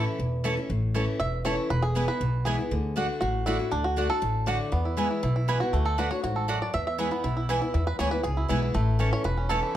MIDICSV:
0, 0, Header, 1, 5, 480
1, 0, Start_track
1, 0, Tempo, 251467
1, 1332, Time_signature, 4, 2, 24, 8
1, 18645, End_track
2, 0, Start_track
2, 0, Title_t, "Mandolin"
2, 0, Program_c, 0, 25
2, 838, Note_on_c, 0, 57, 87
2, 847, Note_on_c, 0, 64, 97
2, 855, Note_on_c, 0, 73, 93
2, 862, Note_on_c, 0, 81, 90
2, 1021, Note_off_c, 0, 57, 0
2, 1025, Note_off_c, 0, 64, 0
2, 1029, Note_off_c, 0, 73, 0
2, 1033, Note_off_c, 0, 81, 0
2, 1803, Note_on_c, 0, 57, 82
2, 1811, Note_on_c, 0, 64, 86
2, 1814, Note_on_c, 0, 73, 87
2, 1827, Note_on_c, 0, 81, 89
2, 1985, Note_off_c, 0, 57, 0
2, 1989, Note_off_c, 0, 64, 0
2, 1990, Note_off_c, 0, 73, 0
2, 1996, Note_off_c, 0, 81, 0
2, 2770, Note_on_c, 0, 57, 87
2, 2775, Note_on_c, 0, 64, 99
2, 2783, Note_on_c, 0, 73, 91
2, 2791, Note_on_c, 0, 81, 97
2, 2949, Note_off_c, 0, 57, 0
2, 2952, Note_off_c, 0, 64, 0
2, 2956, Note_off_c, 0, 73, 0
2, 2960, Note_off_c, 0, 81, 0
2, 3727, Note_on_c, 0, 59, 75
2, 3735, Note_on_c, 0, 64, 84
2, 3742, Note_on_c, 0, 71, 91
2, 3748, Note_on_c, 0, 80, 86
2, 3909, Note_off_c, 0, 59, 0
2, 3912, Note_off_c, 0, 64, 0
2, 3916, Note_off_c, 0, 71, 0
2, 3919, Note_off_c, 0, 80, 0
2, 4694, Note_on_c, 0, 59, 90
2, 4701, Note_on_c, 0, 64, 97
2, 4707, Note_on_c, 0, 71, 103
2, 4715, Note_on_c, 0, 80, 97
2, 4873, Note_off_c, 0, 59, 0
2, 4876, Note_off_c, 0, 64, 0
2, 4879, Note_off_c, 0, 71, 0
2, 4883, Note_off_c, 0, 80, 0
2, 5653, Note_on_c, 0, 57, 79
2, 5663, Note_on_c, 0, 66, 93
2, 5672, Note_on_c, 0, 74, 84
2, 5677, Note_on_c, 0, 78, 99
2, 5833, Note_off_c, 0, 57, 0
2, 5838, Note_off_c, 0, 66, 0
2, 5842, Note_off_c, 0, 74, 0
2, 5845, Note_off_c, 0, 78, 0
2, 6618, Note_on_c, 0, 57, 93
2, 6624, Note_on_c, 0, 66, 89
2, 6631, Note_on_c, 0, 74, 93
2, 6638, Note_on_c, 0, 78, 102
2, 6796, Note_off_c, 0, 57, 0
2, 6799, Note_off_c, 0, 66, 0
2, 6802, Note_off_c, 0, 74, 0
2, 6806, Note_off_c, 0, 78, 0
2, 7575, Note_on_c, 0, 57, 85
2, 7582, Note_on_c, 0, 66, 89
2, 7589, Note_on_c, 0, 74, 84
2, 7599, Note_on_c, 0, 78, 93
2, 7754, Note_off_c, 0, 57, 0
2, 7758, Note_off_c, 0, 66, 0
2, 7761, Note_off_c, 0, 74, 0
2, 7767, Note_off_c, 0, 78, 0
2, 8532, Note_on_c, 0, 57, 89
2, 8542, Note_on_c, 0, 66, 99
2, 8546, Note_on_c, 0, 74, 98
2, 8554, Note_on_c, 0, 78, 106
2, 8713, Note_off_c, 0, 57, 0
2, 8718, Note_off_c, 0, 66, 0
2, 8720, Note_off_c, 0, 74, 0
2, 8724, Note_off_c, 0, 78, 0
2, 9491, Note_on_c, 0, 59, 85
2, 9494, Note_on_c, 0, 64, 88
2, 9504, Note_on_c, 0, 71, 101
2, 9512, Note_on_c, 0, 80, 96
2, 9673, Note_off_c, 0, 59, 0
2, 9674, Note_off_c, 0, 64, 0
2, 9680, Note_off_c, 0, 71, 0
2, 9684, Note_off_c, 0, 80, 0
2, 10459, Note_on_c, 0, 59, 80
2, 10472, Note_on_c, 0, 64, 101
2, 10475, Note_on_c, 0, 71, 107
2, 10483, Note_on_c, 0, 80, 100
2, 10637, Note_off_c, 0, 59, 0
2, 10643, Note_off_c, 0, 64, 0
2, 10645, Note_off_c, 0, 71, 0
2, 10649, Note_off_c, 0, 80, 0
2, 11416, Note_on_c, 0, 57, 79
2, 11420, Note_on_c, 0, 66, 84
2, 11429, Note_on_c, 0, 74, 95
2, 11435, Note_on_c, 0, 78, 87
2, 11595, Note_off_c, 0, 57, 0
2, 11598, Note_off_c, 0, 66, 0
2, 11602, Note_off_c, 0, 74, 0
2, 11605, Note_off_c, 0, 78, 0
2, 12371, Note_on_c, 0, 57, 98
2, 12385, Note_on_c, 0, 66, 92
2, 12390, Note_on_c, 0, 74, 93
2, 12396, Note_on_c, 0, 78, 103
2, 12553, Note_off_c, 0, 57, 0
2, 12560, Note_off_c, 0, 66, 0
2, 12562, Note_off_c, 0, 74, 0
2, 12566, Note_off_c, 0, 78, 0
2, 13331, Note_on_c, 0, 59, 90
2, 13340, Note_on_c, 0, 64, 87
2, 13347, Note_on_c, 0, 71, 90
2, 13354, Note_on_c, 0, 80, 83
2, 13513, Note_off_c, 0, 59, 0
2, 13518, Note_off_c, 0, 64, 0
2, 13521, Note_off_c, 0, 71, 0
2, 13524, Note_off_c, 0, 80, 0
2, 14299, Note_on_c, 0, 59, 87
2, 14310, Note_on_c, 0, 64, 95
2, 14313, Note_on_c, 0, 71, 98
2, 14320, Note_on_c, 0, 80, 104
2, 14477, Note_off_c, 0, 59, 0
2, 14482, Note_off_c, 0, 64, 0
2, 14484, Note_off_c, 0, 71, 0
2, 14487, Note_off_c, 0, 80, 0
2, 15255, Note_on_c, 0, 59, 77
2, 15264, Note_on_c, 0, 64, 87
2, 15273, Note_on_c, 0, 71, 96
2, 15276, Note_on_c, 0, 80, 87
2, 15434, Note_off_c, 0, 59, 0
2, 15439, Note_off_c, 0, 64, 0
2, 15443, Note_off_c, 0, 71, 0
2, 15444, Note_off_c, 0, 80, 0
2, 16211, Note_on_c, 0, 59, 84
2, 16225, Note_on_c, 0, 64, 92
2, 16232, Note_on_c, 0, 71, 97
2, 16234, Note_on_c, 0, 80, 98
2, 16391, Note_off_c, 0, 59, 0
2, 16398, Note_off_c, 0, 64, 0
2, 16402, Note_off_c, 0, 71, 0
2, 16403, Note_off_c, 0, 80, 0
2, 17161, Note_on_c, 0, 57, 82
2, 17171, Note_on_c, 0, 64, 89
2, 17179, Note_on_c, 0, 73, 85
2, 17187, Note_on_c, 0, 81, 90
2, 17345, Note_off_c, 0, 57, 0
2, 17350, Note_off_c, 0, 64, 0
2, 17354, Note_off_c, 0, 73, 0
2, 17357, Note_off_c, 0, 81, 0
2, 18122, Note_on_c, 0, 57, 92
2, 18130, Note_on_c, 0, 64, 91
2, 18138, Note_on_c, 0, 73, 103
2, 18143, Note_on_c, 0, 81, 99
2, 18303, Note_off_c, 0, 57, 0
2, 18307, Note_off_c, 0, 64, 0
2, 18311, Note_off_c, 0, 73, 0
2, 18314, Note_off_c, 0, 81, 0
2, 18645, End_track
3, 0, Start_track
3, 0, Title_t, "Five-string banjo"
3, 0, Program_c, 1, 105
3, 0, Note_on_c, 1, 64, 80
3, 1030, Note_off_c, 1, 64, 0
3, 2282, Note_on_c, 1, 76, 113
3, 2758, Note_off_c, 1, 76, 0
3, 2765, Note_on_c, 1, 73, 105
3, 3242, Note_off_c, 1, 73, 0
3, 3249, Note_on_c, 1, 71, 118
3, 3483, Note_on_c, 1, 68, 102
3, 3506, Note_off_c, 1, 71, 0
3, 3970, Note_on_c, 1, 71, 106
3, 3988, Note_off_c, 1, 68, 0
3, 4678, Note_on_c, 1, 68, 93
3, 4714, Note_off_c, 1, 71, 0
3, 5819, Note_off_c, 1, 68, 0
3, 6120, Note_on_c, 1, 66, 97
3, 6605, Note_on_c, 1, 64, 90
3, 6626, Note_off_c, 1, 66, 0
3, 7090, Note_on_c, 1, 62, 102
3, 7108, Note_off_c, 1, 64, 0
3, 7336, Note_on_c, 1, 66, 86
3, 7349, Note_off_c, 1, 62, 0
3, 7788, Note_off_c, 1, 66, 0
3, 7819, Note_on_c, 1, 69, 101
3, 8533, Note_on_c, 1, 74, 81
3, 8560, Note_off_c, 1, 69, 0
3, 9015, Note_on_c, 1, 59, 71
3, 9262, Note_on_c, 1, 64, 57
3, 9470, Note_off_c, 1, 64, 0
3, 9485, Note_off_c, 1, 74, 0
3, 9493, Note_on_c, 1, 64, 60
3, 9695, Note_off_c, 1, 59, 0
3, 9725, Note_off_c, 1, 64, 0
3, 9748, Note_on_c, 1, 64, 61
3, 9958, Note_off_c, 1, 64, 0
3, 9981, Note_on_c, 1, 64, 63
3, 10205, Note_off_c, 1, 64, 0
3, 10228, Note_on_c, 1, 64, 65
3, 10470, Note_on_c, 1, 71, 86
3, 10684, Note_off_c, 1, 71, 0
3, 10692, Note_on_c, 1, 66, 89
3, 10896, Note_off_c, 1, 64, 0
3, 10938, Note_on_c, 1, 57, 78
3, 11146, Note_off_c, 1, 66, 0
3, 11175, Note_on_c, 1, 69, 82
3, 11424, Note_off_c, 1, 69, 0
3, 11425, Note_on_c, 1, 71, 94
3, 11617, Note_off_c, 1, 57, 0
3, 11649, Note_off_c, 1, 71, 0
3, 11657, Note_on_c, 1, 73, 101
3, 11893, Note_off_c, 1, 73, 0
3, 11900, Note_on_c, 1, 66, 68
3, 12137, Note_on_c, 1, 69, 59
3, 12355, Note_off_c, 1, 66, 0
3, 12378, Note_on_c, 1, 66, 59
3, 12635, Note_on_c, 1, 74, 101
3, 12811, Note_off_c, 1, 69, 0
3, 12856, Note_off_c, 1, 66, 0
3, 12863, Note_on_c, 1, 76, 124
3, 12873, Note_off_c, 1, 74, 0
3, 13091, Note_off_c, 1, 76, 0
3, 13113, Note_on_c, 1, 76, 93
3, 13329, Note_off_c, 1, 76, 0
3, 13339, Note_on_c, 1, 64, 59
3, 13584, Note_on_c, 1, 59, 73
3, 13815, Note_off_c, 1, 64, 0
3, 13815, Note_on_c, 1, 64, 64
3, 14061, Note_off_c, 1, 64, 0
3, 14061, Note_on_c, 1, 64, 61
3, 14253, Note_off_c, 1, 59, 0
3, 14296, Note_off_c, 1, 64, 0
3, 14296, Note_on_c, 1, 64, 57
3, 14531, Note_off_c, 1, 64, 0
3, 14539, Note_on_c, 1, 64, 66
3, 14767, Note_off_c, 1, 64, 0
3, 14775, Note_on_c, 1, 64, 66
3, 15013, Note_off_c, 1, 64, 0
3, 15020, Note_on_c, 1, 71, 100
3, 15241, Note_off_c, 1, 71, 0
3, 15249, Note_on_c, 1, 73, 106
3, 15475, Note_off_c, 1, 73, 0
3, 15483, Note_on_c, 1, 71, 96
3, 15710, Note_off_c, 1, 71, 0
3, 15718, Note_on_c, 1, 68, 89
3, 15976, Note_on_c, 1, 64, 68
3, 16174, Note_off_c, 1, 68, 0
3, 16212, Note_off_c, 1, 64, 0
3, 16212, Note_on_c, 1, 64, 65
3, 16462, Note_off_c, 1, 64, 0
3, 16462, Note_on_c, 1, 64, 54
3, 16694, Note_on_c, 1, 57, 81
3, 17165, Note_off_c, 1, 64, 0
3, 17173, Note_on_c, 1, 61, 56
3, 17421, Note_on_c, 1, 73, 111
3, 17639, Note_off_c, 1, 73, 0
3, 17654, Note_on_c, 1, 71, 106
3, 17711, Note_off_c, 1, 57, 0
3, 17849, Note_off_c, 1, 61, 0
3, 17893, Note_on_c, 1, 61, 60
3, 18118, Note_on_c, 1, 69, 74
3, 18147, Note_off_c, 1, 71, 0
3, 18378, Note_on_c, 1, 64, 61
3, 18562, Note_off_c, 1, 61, 0
3, 18570, Note_off_c, 1, 69, 0
3, 18645, Note_off_c, 1, 64, 0
3, 18645, End_track
4, 0, Start_track
4, 0, Title_t, "Steel-string acoustic guitar"
4, 0, Program_c, 2, 25
4, 0, Note_on_c, 2, 45, 82
4, 0, Note_on_c, 2, 52, 74
4, 0, Note_on_c, 2, 57, 78
4, 0, Note_on_c, 2, 61, 84
4, 0, Note_on_c, 2, 64, 93
4, 322, Note_off_c, 2, 45, 0
4, 337, Note_off_c, 2, 52, 0
4, 345, Note_off_c, 2, 57, 0
4, 351, Note_off_c, 2, 61, 0
4, 357, Note_off_c, 2, 64, 0
4, 374, Note_on_c, 2, 40, 89
4, 842, Note_on_c, 2, 52, 85
4, 857, Note_on_c, 2, 57, 87
4, 868, Note_on_c, 2, 61, 86
4, 885, Note_on_c, 2, 64, 95
4, 1066, Note_off_c, 2, 64, 0
4, 1083, Note_off_c, 2, 52, 0
4, 1089, Note_on_c, 2, 64, 62
4, 1090, Note_off_c, 2, 57, 0
4, 1096, Note_off_c, 2, 61, 0
4, 1124, Note_on_c, 2, 61, 51
4, 1287, Note_off_c, 2, 40, 0
4, 1319, Note_off_c, 2, 64, 0
4, 1332, Note_on_c, 2, 45, 83
4, 1337, Note_off_c, 2, 61, 0
4, 1805, Note_on_c, 2, 52, 77
4, 1823, Note_on_c, 2, 57, 86
4, 1832, Note_on_c, 2, 61, 89
4, 1845, Note_on_c, 2, 64, 84
4, 2247, Note_off_c, 2, 45, 0
4, 2267, Note_off_c, 2, 52, 0
4, 2276, Note_off_c, 2, 57, 0
4, 2280, Note_off_c, 2, 61, 0
4, 2287, Note_off_c, 2, 64, 0
4, 2292, Note_on_c, 2, 40, 85
4, 2760, Note_on_c, 2, 52, 89
4, 2772, Note_on_c, 2, 57, 77
4, 2782, Note_on_c, 2, 61, 99
4, 2798, Note_on_c, 2, 64, 94
4, 3208, Note_off_c, 2, 40, 0
4, 3225, Note_off_c, 2, 52, 0
4, 3231, Note_off_c, 2, 57, 0
4, 3236, Note_off_c, 2, 61, 0
4, 3244, Note_off_c, 2, 64, 0
4, 3250, Note_on_c, 2, 40, 80
4, 3722, Note_on_c, 2, 52, 73
4, 3736, Note_on_c, 2, 56, 85
4, 3748, Note_on_c, 2, 59, 94
4, 3759, Note_on_c, 2, 64, 98
4, 3947, Note_off_c, 2, 64, 0
4, 3966, Note_off_c, 2, 52, 0
4, 3970, Note_on_c, 2, 64, 68
4, 3973, Note_off_c, 2, 56, 0
4, 3979, Note_off_c, 2, 59, 0
4, 4010, Note_on_c, 2, 59, 50
4, 4168, Note_off_c, 2, 40, 0
4, 4202, Note_off_c, 2, 64, 0
4, 4216, Note_on_c, 2, 47, 93
4, 4222, Note_off_c, 2, 59, 0
4, 4682, Note_on_c, 2, 52, 81
4, 4699, Note_on_c, 2, 56, 81
4, 4707, Note_on_c, 2, 59, 92
4, 4723, Note_on_c, 2, 64, 90
4, 4914, Note_off_c, 2, 64, 0
4, 4926, Note_off_c, 2, 52, 0
4, 4935, Note_off_c, 2, 56, 0
4, 4937, Note_on_c, 2, 64, 57
4, 4939, Note_off_c, 2, 59, 0
4, 4976, Note_on_c, 2, 59, 48
4, 5132, Note_off_c, 2, 47, 0
4, 5167, Note_off_c, 2, 64, 0
4, 5179, Note_on_c, 2, 50, 86
4, 5186, Note_off_c, 2, 59, 0
4, 5621, Note_off_c, 2, 50, 0
4, 5644, Note_on_c, 2, 50, 81
4, 5658, Note_on_c, 2, 57, 83
4, 5669, Note_on_c, 2, 62, 92
4, 5678, Note_on_c, 2, 66, 91
4, 6109, Note_off_c, 2, 50, 0
4, 6116, Note_off_c, 2, 57, 0
4, 6122, Note_off_c, 2, 62, 0
4, 6126, Note_off_c, 2, 66, 0
4, 6140, Note_on_c, 2, 45, 96
4, 6605, Note_on_c, 2, 50, 93
4, 6626, Note_on_c, 2, 57, 90
4, 6632, Note_on_c, 2, 62, 85
4, 6646, Note_on_c, 2, 66, 95
4, 6831, Note_off_c, 2, 66, 0
4, 6849, Note_off_c, 2, 50, 0
4, 6854, Note_on_c, 2, 66, 58
4, 6860, Note_off_c, 2, 57, 0
4, 6863, Note_off_c, 2, 62, 0
4, 6890, Note_on_c, 2, 62, 47
4, 7054, Note_off_c, 2, 45, 0
4, 7086, Note_off_c, 2, 66, 0
4, 7098, Note_on_c, 2, 50, 77
4, 7104, Note_off_c, 2, 62, 0
4, 7541, Note_off_c, 2, 50, 0
4, 7564, Note_on_c, 2, 50, 74
4, 7578, Note_on_c, 2, 57, 90
4, 7591, Note_on_c, 2, 62, 86
4, 7600, Note_on_c, 2, 66, 100
4, 7784, Note_off_c, 2, 66, 0
4, 7807, Note_on_c, 2, 66, 54
4, 7809, Note_off_c, 2, 50, 0
4, 7816, Note_off_c, 2, 57, 0
4, 7822, Note_off_c, 2, 62, 0
4, 7847, Note_on_c, 2, 62, 49
4, 8042, Note_off_c, 2, 66, 0
4, 8050, Note_on_c, 2, 45, 96
4, 8063, Note_off_c, 2, 62, 0
4, 8517, Note_on_c, 2, 50, 92
4, 8532, Note_on_c, 2, 57, 96
4, 8542, Note_on_c, 2, 62, 86
4, 8550, Note_on_c, 2, 66, 92
4, 8970, Note_off_c, 2, 45, 0
4, 8986, Note_off_c, 2, 50, 0
4, 8994, Note_off_c, 2, 57, 0
4, 8999, Note_off_c, 2, 62, 0
4, 9003, Note_off_c, 2, 66, 0
4, 9005, Note_on_c, 2, 40, 83
4, 9481, Note_on_c, 2, 52, 83
4, 9493, Note_on_c, 2, 56, 89
4, 9504, Note_on_c, 2, 59, 96
4, 9512, Note_on_c, 2, 64, 104
4, 9927, Note_off_c, 2, 40, 0
4, 9948, Note_off_c, 2, 52, 0
4, 9955, Note_off_c, 2, 56, 0
4, 9960, Note_off_c, 2, 59, 0
4, 9964, Note_off_c, 2, 64, 0
4, 9980, Note_on_c, 2, 47, 100
4, 10458, Note_on_c, 2, 52, 82
4, 10476, Note_on_c, 2, 56, 89
4, 10483, Note_on_c, 2, 59, 86
4, 10498, Note_on_c, 2, 64, 88
4, 10685, Note_off_c, 2, 64, 0
4, 10696, Note_off_c, 2, 52, 0
4, 10705, Note_off_c, 2, 56, 0
4, 10707, Note_on_c, 2, 64, 60
4, 10708, Note_off_c, 2, 59, 0
4, 10744, Note_on_c, 2, 59, 49
4, 10895, Note_off_c, 2, 47, 0
4, 10933, Note_off_c, 2, 64, 0
4, 10951, Note_on_c, 2, 50, 86
4, 10952, Note_off_c, 2, 59, 0
4, 11392, Note_off_c, 2, 50, 0
4, 11415, Note_on_c, 2, 50, 85
4, 11429, Note_on_c, 2, 57, 84
4, 11442, Note_on_c, 2, 62, 79
4, 11455, Note_on_c, 2, 66, 85
4, 11638, Note_off_c, 2, 66, 0
4, 11655, Note_off_c, 2, 50, 0
4, 11661, Note_on_c, 2, 66, 62
4, 11662, Note_off_c, 2, 57, 0
4, 11668, Note_off_c, 2, 62, 0
4, 11698, Note_on_c, 2, 62, 46
4, 11890, Note_off_c, 2, 66, 0
4, 11906, Note_on_c, 2, 44, 94
4, 11908, Note_off_c, 2, 62, 0
4, 12361, Note_off_c, 2, 44, 0
4, 12384, Note_on_c, 2, 42, 83
4, 12840, Note_off_c, 2, 42, 0
4, 12857, Note_on_c, 2, 40, 84
4, 13334, Note_on_c, 2, 52, 82
4, 13343, Note_on_c, 2, 56, 90
4, 13356, Note_on_c, 2, 59, 87
4, 13372, Note_on_c, 2, 64, 88
4, 13548, Note_off_c, 2, 64, 0
4, 13571, Note_on_c, 2, 64, 60
4, 13574, Note_off_c, 2, 52, 0
4, 13579, Note_off_c, 2, 56, 0
4, 13585, Note_off_c, 2, 59, 0
4, 13606, Note_on_c, 2, 59, 49
4, 13773, Note_off_c, 2, 40, 0
4, 13805, Note_off_c, 2, 64, 0
4, 13822, Note_off_c, 2, 59, 0
4, 13822, Note_on_c, 2, 47, 99
4, 14297, Note_on_c, 2, 52, 94
4, 14314, Note_on_c, 2, 56, 84
4, 14320, Note_on_c, 2, 59, 97
4, 14339, Note_on_c, 2, 64, 106
4, 14516, Note_off_c, 2, 64, 0
4, 14535, Note_off_c, 2, 52, 0
4, 14539, Note_on_c, 2, 64, 55
4, 14544, Note_off_c, 2, 56, 0
4, 14547, Note_off_c, 2, 59, 0
4, 14571, Note_on_c, 2, 59, 50
4, 14735, Note_off_c, 2, 47, 0
4, 14768, Note_off_c, 2, 64, 0
4, 14778, Note_on_c, 2, 40, 78
4, 14785, Note_off_c, 2, 59, 0
4, 15250, Note_on_c, 2, 52, 91
4, 15260, Note_on_c, 2, 56, 83
4, 15276, Note_on_c, 2, 59, 94
4, 15284, Note_on_c, 2, 64, 90
4, 15476, Note_off_c, 2, 64, 0
4, 15491, Note_off_c, 2, 52, 0
4, 15496, Note_off_c, 2, 56, 0
4, 15499, Note_on_c, 2, 64, 68
4, 15504, Note_off_c, 2, 59, 0
4, 15535, Note_on_c, 2, 59, 46
4, 15692, Note_off_c, 2, 40, 0
4, 15728, Note_off_c, 2, 64, 0
4, 15730, Note_on_c, 2, 47, 94
4, 15746, Note_off_c, 2, 59, 0
4, 16196, Note_on_c, 2, 52, 82
4, 16210, Note_on_c, 2, 56, 83
4, 16220, Note_on_c, 2, 59, 91
4, 16230, Note_on_c, 2, 64, 95
4, 16646, Note_off_c, 2, 47, 0
4, 16664, Note_off_c, 2, 52, 0
4, 16670, Note_off_c, 2, 56, 0
4, 16675, Note_off_c, 2, 59, 0
4, 16681, Note_off_c, 2, 64, 0
4, 16690, Note_on_c, 2, 45, 87
4, 17158, Note_on_c, 2, 52, 82
4, 17172, Note_on_c, 2, 57, 82
4, 17183, Note_on_c, 2, 61, 84
4, 17195, Note_on_c, 2, 64, 89
4, 17605, Note_off_c, 2, 45, 0
4, 17623, Note_off_c, 2, 52, 0
4, 17630, Note_off_c, 2, 57, 0
4, 17635, Note_off_c, 2, 61, 0
4, 17641, Note_off_c, 2, 64, 0
4, 17641, Note_on_c, 2, 40, 95
4, 18123, Note_on_c, 2, 52, 86
4, 18134, Note_on_c, 2, 57, 97
4, 18151, Note_on_c, 2, 61, 90
4, 18158, Note_on_c, 2, 64, 104
4, 18558, Note_off_c, 2, 40, 0
4, 18583, Note_off_c, 2, 52, 0
4, 18589, Note_off_c, 2, 57, 0
4, 18597, Note_off_c, 2, 61, 0
4, 18601, Note_off_c, 2, 64, 0
4, 18645, End_track
5, 0, Start_track
5, 0, Title_t, "Upright bass"
5, 0, Program_c, 3, 32
5, 363, Note_on_c, 3, 28, 85
5, 1044, Note_off_c, 3, 28, 0
5, 1329, Note_on_c, 3, 33, 92
5, 2009, Note_off_c, 3, 33, 0
5, 2289, Note_on_c, 3, 28, 75
5, 2969, Note_off_c, 3, 28, 0
5, 3254, Note_on_c, 3, 28, 95
5, 3933, Note_off_c, 3, 28, 0
5, 4209, Note_on_c, 3, 35, 85
5, 4891, Note_off_c, 3, 35, 0
5, 5177, Note_on_c, 3, 38, 99
5, 5856, Note_off_c, 3, 38, 0
5, 6141, Note_on_c, 3, 33, 82
5, 6819, Note_off_c, 3, 33, 0
5, 7108, Note_on_c, 3, 38, 87
5, 7783, Note_off_c, 3, 38, 0
5, 8057, Note_on_c, 3, 33, 83
5, 8736, Note_off_c, 3, 33, 0
5, 9021, Note_on_c, 3, 40, 87
5, 9699, Note_off_c, 3, 40, 0
5, 9984, Note_on_c, 3, 35, 83
5, 10661, Note_off_c, 3, 35, 0
5, 10940, Note_on_c, 3, 38, 92
5, 11618, Note_off_c, 3, 38, 0
5, 11908, Note_on_c, 3, 33, 81
5, 12584, Note_off_c, 3, 33, 0
5, 12862, Note_on_c, 3, 40, 93
5, 13539, Note_off_c, 3, 40, 0
5, 13825, Note_on_c, 3, 35, 77
5, 14501, Note_off_c, 3, 35, 0
5, 14783, Note_on_c, 3, 40, 96
5, 15121, Note_off_c, 3, 40, 0
5, 15258, Note_on_c, 3, 38, 84
5, 15667, Note_off_c, 3, 38, 0
5, 15749, Note_on_c, 3, 37, 86
5, 16153, Note_off_c, 3, 37, 0
5, 16226, Note_on_c, 3, 35, 85
5, 16630, Note_off_c, 3, 35, 0
5, 16699, Note_on_c, 3, 33, 95
5, 17374, Note_off_c, 3, 33, 0
5, 17652, Note_on_c, 3, 28, 80
5, 18328, Note_off_c, 3, 28, 0
5, 18645, End_track
0, 0, End_of_file